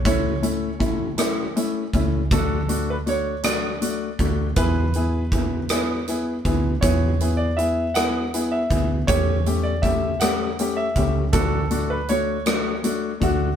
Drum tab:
HH |xxxxxx|xxxxxx|xxxxxx|xxxxxx|
SD |---r--|---r--|---r--|---r--|
BD |o-o--o|o----o|o-o--o|o----o|

HH |xxxxxx|xxxxxx|
SD |---r--|---r--|
BD |o-o--o|o----o|